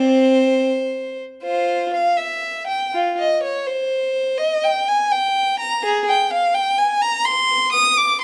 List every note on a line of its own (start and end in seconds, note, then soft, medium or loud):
0.00 0.63 C4 medium
0.00 1.19 C5 medium
1.44 1.90 F4 soft
1.44 1.90 C5 medium
1.94 2.18 F5 medium
2.17 2.68 E5 medium
2.67 2.92 G5 medium
2.93 3.18 F4 medium
3.19 3.43 D#5 medium
3.43 3.66 C#5 medium
3.66 4.39 C5 medium
4.38 4.63 D#5 medium
4.64 4.88 G5 medium
4.89 5.12 G#5 medium
5.12 5.60 G5 medium
5.60 5.83 A#5 medium
5.83 6.07 G#4 medium
6.09 6.32 G5 medium
6.33 6.55 F5 medium
6.54 6.78 G5 medium
6.78 7.02 G#5 medium
7.02 7.26 A#5 medium
7.25 7.74 C6 medium
7.72 7.97 D#6 medium
7.98 8.22 D6 medium